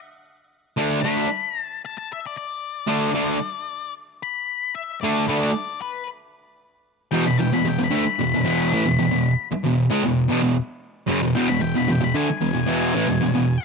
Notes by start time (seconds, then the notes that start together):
0.77 D3 A3 D4
1.02 D3 A3 D4 B5
1.60 A5
1.86 A5
1.98 A5
2.13 E5
2.27 D5
2.37 D5
2.87 D3 A3 D4
3.14 D3 A3 D4
4.23 B5
4.75 E5
5.01 D3 A3 D4 D5
5.26 D3 A3 D4 B4
5.40 D5
5.82 B4
7.12 E2 B2 G5
7.26 E2 B2 B5
7.38 E2 B2 G5
7.52 E2 B2 B5
7.65 E2 B2 G5
7.79 E2 B2
7.84 B5
7.90 D3 A3
7.95 B5
8.04 muted distorted electric guitar stroke
8.19 E2 B2
8.34 E2 B2
8.45 E2 B2 E3
8.73 A2 E3
8.85 E2 B2
8.99 E2 B2
9.11 E2 B2
9.52 muted distorted electric guitar stroke
9.64 E2 B2
9.90 C#3 G#3
10.03 E2 B2
10.28 E2 B2
10.42 E2 B2
11.07 F#2 C#3
11.23 E2 B2
11.35 E2 B2 G5
11.48 E2 B2 B5
11.61 E2 B2 G5
11.75 E2 B2 B5
11.88 E2 B2 G5
12.01 E2 B2 B5
12.14 D3 A3 G#5
12.28 muted distorted electric guitar stroke
12.41 E2 B2
12.53 E2 B2
12.67 E2 B2 E3
12.94 A2 E3
13.07 E2 B2
13.21 E2 B2
13.34 E2 B2